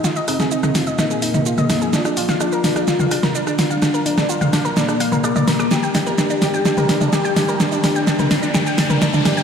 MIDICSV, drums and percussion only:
0, 0, Header, 1, 2, 480
1, 0, Start_track
1, 0, Tempo, 472441
1, 44, Time_signature, 4, 2, 24, 8
1, 9582, End_track
2, 0, Start_track
2, 0, Title_t, "Drums"
2, 43, Note_on_c, 9, 38, 52
2, 43, Note_on_c, 9, 82, 81
2, 144, Note_off_c, 9, 38, 0
2, 144, Note_off_c, 9, 82, 0
2, 164, Note_on_c, 9, 82, 43
2, 266, Note_off_c, 9, 82, 0
2, 283, Note_on_c, 9, 37, 50
2, 283, Note_on_c, 9, 46, 110
2, 283, Note_on_c, 9, 82, 54
2, 385, Note_off_c, 9, 37, 0
2, 385, Note_off_c, 9, 46, 0
2, 385, Note_off_c, 9, 82, 0
2, 403, Note_on_c, 9, 38, 47
2, 403, Note_on_c, 9, 82, 45
2, 505, Note_off_c, 9, 38, 0
2, 505, Note_off_c, 9, 82, 0
2, 522, Note_on_c, 9, 82, 78
2, 623, Note_off_c, 9, 82, 0
2, 643, Note_on_c, 9, 37, 50
2, 643, Note_on_c, 9, 47, 79
2, 643, Note_on_c, 9, 82, 45
2, 744, Note_off_c, 9, 37, 0
2, 744, Note_off_c, 9, 47, 0
2, 744, Note_off_c, 9, 82, 0
2, 761, Note_on_c, 9, 38, 56
2, 761, Note_on_c, 9, 46, 104
2, 761, Note_on_c, 9, 82, 53
2, 863, Note_off_c, 9, 38, 0
2, 863, Note_off_c, 9, 46, 0
2, 863, Note_off_c, 9, 82, 0
2, 881, Note_on_c, 9, 82, 45
2, 983, Note_off_c, 9, 82, 0
2, 1002, Note_on_c, 9, 37, 50
2, 1002, Note_on_c, 9, 38, 55
2, 1002, Note_on_c, 9, 82, 76
2, 1103, Note_off_c, 9, 37, 0
2, 1103, Note_off_c, 9, 38, 0
2, 1103, Note_off_c, 9, 82, 0
2, 1123, Note_on_c, 9, 82, 44
2, 1225, Note_off_c, 9, 82, 0
2, 1242, Note_on_c, 9, 46, 108
2, 1242, Note_on_c, 9, 82, 54
2, 1343, Note_off_c, 9, 46, 0
2, 1343, Note_off_c, 9, 82, 0
2, 1363, Note_on_c, 9, 47, 78
2, 1363, Note_on_c, 9, 82, 45
2, 1465, Note_off_c, 9, 47, 0
2, 1465, Note_off_c, 9, 82, 0
2, 1482, Note_on_c, 9, 82, 77
2, 1584, Note_off_c, 9, 82, 0
2, 1603, Note_on_c, 9, 47, 84
2, 1603, Note_on_c, 9, 82, 41
2, 1704, Note_off_c, 9, 47, 0
2, 1704, Note_off_c, 9, 82, 0
2, 1723, Note_on_c, 9, 37, 49
2, 1723, Note_on_c, 9, 38, 59
2, 1723, Note_on_c, 9, 46, 111
2, 1723, Note_on_c, 9, 82, 55
2, 1825, Note_off_c, 9, 37, 0
2, 1825, Note_off_c, 9, 38, 0
2, 1825, Note_off_c, 9, 46, 0
2, 1825, Note_off_c, 9, 82, 0
2, 1843, Note_on_c, 9, 82, 45
2, 1945, Note_off_c, 9, 82, 0
2, 1963, Note_on_c, 9, 38, 58
2, 1963, Note_on_c, 9, 82, 77
2, 2064, Note_off_c, 9, 38, 0
2, 2064, Note_off_c, 9, 82, 0
2, 2084, Note_on_c, 9, 37, 50
2, 2084, Note_on_c, 9, 82, 44
2, 2186, Note_off_c, 9, 37, 0
2, 2186, Note_off_c, 9, 82, 0
2, 2204, Note_on_c, 9, 46, 111
2, 2204, Note_on_c, 9, 82, 53
2, 2305, Note_off_c, 9, 46, 0
2, 2305, Note_off_c, 9, 82, 0
2, 2324, Note_on_c, 9, 38, 50
2, 2324, Note_on_c, 9, 82, 45
2, 2425, Note_off_c, 9, 38, 0
2, 2425, Note_off_c, 9, 82, 0
2, 2443, Note_on_c, 9, 37, 52
2, 2443, Note_on_c, 9, 82, 77
2, 2545, Note_off_c, 9, 37, 0
2, 2545, Note_off_c, 9, 82, 0
2, 2563, Note_on_c, 9, 82, 43
2, 2665, Note_off_c, 9, 82, 0
2, 2683, Note_on_c, 9, 38, 62
2, 2683, Note_on_c, 9, 46, 109
2, 2683, Note_on_c, 9, 82, 55
2, 2785, Note_off_c, 9, 38, 0
2, 2785, Note_off_c, 9, 46, 0
2, 2785, Note_off_c, 9, 82, 0
2, 2804, Note_on_c, 9, 37, 52
2, 2804, Note_on_c, 9, 82, 44
2, 2906, Note_off_c, 9, 37, 0
2, 2906, Note_off_c, 9, 82, 0
2, 2924, Note_on_c, 9, 38, 59
2, 2924, Note_on_c, 9, 82, 76
2, 3025, Note_off_c, 9, 38, 0
2, 3025, Note_off_c, 9, 82, 0
2, 3045, Note_on_c, 9, 47, 82
2, 3045, Note_on_c, 9, 82, 44
2, 3146, Note_off_c, 9, 47, 0
2, 3146, Note_off_c, 9, 82, 0
2, 3164, Note_on_c, 9, 37, 49
2, 3164, Note_on_c, 9, 46, 106
2, 3164, Note_on_c, 9, 82, 50
2, 3265, Note_off_c, 9, 37, 0
2, 3265, Note_off_c, 9, 46, 0
2, 3265, Note_off_c, 9, 82, 0
2, 3285, Note_on_c, 9, 38, 57
2, 3285, Note_on_c, 9, 47, 76
2, 3285, Note_on_c, 9, 82, 44
2, 3386, Note_off_c, 9, 38, 0
2, 3386, Note_off_c, 9, 47, 0
2, 3386, Note_off_c, 9, 82, 0
2, 3405, Note_on_c, 9, 82, 75
2, 3506, Note_off_c, 9, 82, 0
2, 3526, Note_on_c, 9, 37, 47
2, 3526, Note_on_c, 9, 82, 42
2, 3628, Note_off_c, 9, 37, 0
2, 3628, Note_off_c, 9, 82, 0
2, 3645, Note_on_c, 9, 38, 65
2, 3645, Note_on_c, 9, 46, 111
2, 3645, Note_on_c, 9, 82, 55
2, 3746, Note_off_c, 9, 38, 0
2, 3746, Note_off_c, 9, 46, 0
2, 3746, Note_off_c, 9, 82, 0
2, 3765, Note_on_c, 9, 82, 43
2, 3867, Note_off_c, 9, 82, 0
2, 3884, Note_on_c, 9, 37, 53
2, 3884, Note_on_c, 9, 38, 63
2, 3884, Note_on_c, 9, 82, 75
2, 3986, Note_off_c, 9, 37, 0
2, 3986, Note_off_c, 9, 38, 0
2, 3986, Note_off_c, 9, 82, 0
2, 4005, Note_on_c, 9, 82, 44
2, 4106, Note_off_c, 9, 82, 0
2, 4124, Note_on_c, 9, 46, 105
2, 4124, Note_on_c, 9, 82, 51
2, 4226, Note_off_c, 9, 46, 0
2, 4226, Note_off_c, 9, 82, 0
2, 4243, Note_on_c, 9, 37, 55
2, 4243, Note_on_c, 9, 38, 60
2, 4243, Note_on_c, 9, 82, 44
2, 4345, Note_off_c, 9, 37, 0
2, 4345, Note_off_c, 9, 38, 0
2, 4345, Note_off_c, 9, 82, 0
2, 4363, Note_on_c, 9, 82, 77
2, 4465, Note_off_c, 9, 82, 0
2, 4485, Note_on_c, 9, 47, 82
2, 4485, Note_on_c, 9, 82, 43
2, 4586, Note_off_c, 9, 47, 0
2, 4586, Note_off_c, 9, 82, 0
2, 4604, Note_on_c, 9, 37, 52
2, 4604, Note_on_c, 9, 38, 68
2, 4604, Note_on_c, 9, 46, 108
2, 4604, Note_on_c, 9, 82, 51
2, 4706, Note_off_c, 9, 37, 0
2, 4706, Note_off_c, 9, 38, 0
2, 4706, Note_off_c, 9, 46, 0
2, 4706, Note_off_c, 9, 82, 0
2, 4725, Note_on_c, 9, 82, 42
2, 4827, Note_off_c, 9, 82, 0
2, 4844, Note_on_c, 9, 38, 72
2, 4844, Note_on_c, 9, 82, 74
2, 4946, Note_off_c, 9, 38, 0
2, 4946, Note_off_c, 9, 82, 0
2, 4964, Note_on_c, 9, 37, 54
2, 4964, Note_on_c, 9, 82, 43
2, 5066, Note_off_c, 9, 37, 0
2, 5066, Note_off_c, 9, 82, 0
2, 5084, Note_on_c, 9, 46, 108
2, 5084, Note_on_c, 9, 82, 51
2, 5185, Note_off_c, 9, 46, 0
2, 5185, Note_off_c, 9, 82, 0
2, 5205, Note_on_c, 9, 47, 75
2, 5205, Note_on_c, 9, 82, 43
2, 5307, Note_off_c, 9, 47, 0
2, 5307, Note_off_c, 9, 82, 0
2, 5323, Note_on_c, 9, 37, 55
2, 5323, Note_on_c, 9, 82, 74
2, 5425, Note_off_c, 9, 37, 0
2, 5425, Note_off_c, 9, 82, 0
2, 5444, Note_on_c, 9, 47, 85
2, 5444, Note_on_c, 9, 82, 41
2, 5546, Note_off_c, 9, 47, 0
2, 5546, Note_off_c, 9, 82, 0
2, 5563, Note_on_c, 9, 38, 74
2, 5563, Note_on_c, 9, 46, 111
2, 5563, Note_on_c, 9, 82, 52
2, 5665, Note_off_c, 9, 38, 0
2, 5665, Note_off_c, 9, 46, 0
2, 5665, Note_off_c, 9, 82, 0
2, 5685, Note_on_c, 9, 37, 53
2, 5685, Note_on_c, 9, 82, 43
2, 5786, Note_off_c, 9, 37, 0
2, 5786, Note_off_c, 9, 82, 0
2, 5804, Note_on_c, 9, 38, 72
2, 5804, Note_on_c, 9, 82, 76
2, 5906, Note_off_c, 9, 38, 0
2, 5906, Note_off_c, 9, 82, 0
2, 5924, Note_on_c, 9, 82, 42
2, 6026, Note_off_c, 9, 82, 0
2, 6042, Note_on_c, 9, 38, 74
2, 6042, Note_on_c, 9, 46, 102
2, 6042, Note_on_c, 9, 82, 55
2, 6144, Note_off_c, 9, 38, 0
2, 6144, Note_off_c, 9, 46, 0
2, 6144, Note_off_c, 9, 82, 0
2, 6163, Note_on_c, 9, 82, 43
2, 6265, Note_off_c, 9, 82, 0
2, 6282, Note_on_c, 9, 38, 76
2, 6282, Note_on_c, 9, 82, 75
2, 6383, Note_off_c, 9, 38, 0
2, 6383, Note_off_c, 9, 82, 0
2, 6401, Note_on_c, 9, 82, 44
2, 6503, Note_off_c, 9, 82, 0
2, 6521, Note_on_c, 9, 38, 74
2, 6521, Note_on_c, 9, 46, 104
2, 6521, Note_on_c, 9, 82, 51
2, 6623, Note_off_c, 9, 38, 0
2, 6623, Note_off_c, 9, 46, 0
2, 6623, Note_off_c, 9, 82, 0
2, 6643, Note_on_c, 9, 82, 42
2, 6744, Note_off_c, 9, 82, 0
2, 6761, Note_on_c, 9, 38, 79
2, 6761, Note_on_c, 9, 82, 76
2, 6863, Note_off_c, 9, 38, 0
2, 6863, Note_off_c, 9, 82, 0
2, 6883, Note_on_c, 9, 47, 86
2, 6883, Note_on_c, 9, 82, 43
2, 6984, Note_off_c, 9, 47, 0
2, 6984, Note_off_c, 9, 82, 0
2, 7001, Note_on_c, 9, 38, 79
2, 7001, Note_on_c, 9, 46, 103
2, 7001, Note_on_c, 9, 82, 53
2, 7103, Note_off_c, 9, 38, 0
2, 7103, Note_off_c, 9, 46, 0
2, 7103, Note_off_c, 9, 82, 0
2, 7122, Note_on_c, 9, 47, 78
2, 7122, Note_on_c, 9, 82, 42
2, 7223, Note_off_c, 9, 47, 0
2, 7223, Note_off_c, 9, 82, 0
2, 7241, Note_on_c, 9, 38, 79
2, 7241, Note_on_c, 9, 82, 78
2, 7343, Note_off_c, 9, 38, 0
2, 7343, Note_off_c, 9, 82, 0
2, 7364, Note_on_c, 9, 82, 41
2, 7465, Note_off_c, 9, 82, 0
2, 7483, Note_on_c, 9, 38, 82
2, 7483, Note_on_c, 9, 46, 109
2, 7483, Note_on_c, 9, 82, 53
2, 7584, Note_off_c, 9, 38, 0
2, 7584, Note_off_c, 9, 46, 0
2, 7584, Note_off_c, 9, 82, 0
2, 7603, Note_on_c, 9, 82, 43
2, 7705, Note_off_c, 9, 82, 0
2, 7723, Note_on_c, 9, 38, 84
2, 7723, Note_on_c, 9, 82, 78
2, 7824, Note_off_c, 9, 38, 0
2, 7824, Note_off_c, 9, 82, 0
2, 7843, Note_on_c, 9, 82, 44
2, 7945, Note_off_c, 9, 82, 0
2, 7963, Note_on_c, 9, 38, 82
2, 7963, Note_on_c, 9, 46, 104
2, 7963, Note_on_c, 9, 82, 57
2, 8064, Note_off_c, 9, 38, 0
2, 8064, Note_off_c, 9, 46, 0
2, 8064, Note_off_c, 9, 82, 0
2, 8083, Note_on_c, 9, 82, 43
2, 8185, Note_off_c, 9, 82, 0
2, 8202, Note_on_c, 9, 38, 82
2, 8202, Note_on_c, 9, 82, 79
2, 8304, Note_off_c, 9, 38, 0
2, 8304, Note_off_c, 9, 82, 0
2, 8322, Note_on_c, 9, 47, 92
2, 8322, Note_on_c, 9, 82, 46
2, 8424, Note_off_c, 9, 47, 0
2, 8424, Note_off_c, 9, 82, 0
2, 8441, Note_on_c, 9, 38, 86
2, 8441, Note_on_c, 9, 46, 98
2, 8441, Note_on_c, 9, 82, 55
2, 8543, Note_off_c, 9, 38, 0
2, 8543, Note_off_c, 9, 46, 0
2, 8543, Note_off_c, 9, 82, 0
2, 8562, Note_on_c, 9, 82, 44
2, 8664, Note_off_c, 9, 82, 0
2, 8682, Note_on_c, 9, 38, 85
2, 8682, Note_on_c, 9, 82, 77
2, 8783, Note_off_c, 9, 38, 0
2, 8783, Note_off_c, 9, 82, 0
2, 8802, Note_on_c, 9, 82, 45
2, 8904, Note_off_c, 9, 82, 0
2, 8921, Note_on_c, 9, 38, 86
2, 8921, Note_on_c, 9, 46, 100
2, 8921, Note_on_c, 9, 82, 54
2, 9023, Note_off_c, 9, 38, 0
2, 9023, Note_off_c, 9, 46, 0
2, 9023, Note_off_c, 9, 82, 0
2, 9042, Note_on_c, 9, 47, 85
2, 9042, Note_on_c, 9, 82, 47
2, 9144, Note_off_c, 9, 47, 0
2, 9144, Note_off_c, 9, 82, 0
2, 9161, Note_on_c, 9, 38, 90
2, 9161, Note_on_c, 9, 82, 79
2, 9263, Note_off_c, 9, 38, 0
2, 9263, Note_off_c, 9, 82, 0
2, 9283, Note_on_c, 9, 47, 91
2, 9283, Note_on_c, 9, 82, 42
2, 9384, Note_off_c, 9, 47, 0
2, 9384, Note_off_c, 9, 82, 0
2, 9402, Note_on_c, 9, 38, 93
2, 9402, Note_on_c, 9, 46, 101
2, 9402, Note_on_c, 9, 82, 55
2, 9504, Note_off_c, 9, 38, 0
2, 9504, Note_off_c, 9, 46, 0
2, 9504, Note_off_c, 9, 82, 0
2, 9524, Note_on_c, 9, 82, 44
2, 9582, Note_off_c, 9, 82, 0
2, 9582, End_track
0, 0, End_of_file